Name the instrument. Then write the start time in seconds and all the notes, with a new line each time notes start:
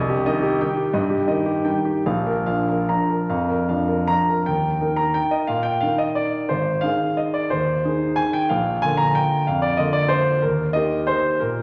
grand piano
Already playing: C2 D#5
0.09 G4
0.26 D#3 D#4 D#5
0.42 G4
0.61 D#3 D#4 G5
0.77 G4
0.93 G2 D#5
1.10 G4
1.28 D#3 D#4 D#5
1.46 G4
1.65 D#3 D#4 G5
1.85 G4
2.06 A#1 F5
2.27 A#4
2.46 F3 D4 F5
2.68 A#4
2.89 F3 D4 A#5
3.09 A#4
3.30 F2 F5
3.49 A#4
3.69 F3 D4 F5
3.88 A#4
4.08 F3 D4 A#5
4.29 A#4
4.46 D#2 G5
4.81 D#3 D#4 A#4
4.96 A#5
5.14 G5
5.31 D#5
5.47 A#2 F5
5.63 G5
5.81 D#3 D#4 A#4 F5
5.98 D#5
6.15 D5
6.49 G#1 C5
6.81 D#3 D#4 G#4 F5
7.17 D#5
7.34 D5
7.50 D#2 C5
7.85 D#3 D#4 G#4
8.16 G#5
8.33 G5
8.49 A#1 F5
8.82 D3 A#3 F4 G#5
8.97 A#5
9.15 G5
9.47 F2 F5
9.62 D5
9.77 D3 A#3 F4 D#5
9.93 D5
10.08 C5
10.42 D#2 A#4
10.73 D#3 A#3 G4 D#5
11.07 C5
11.40 A#2 A#4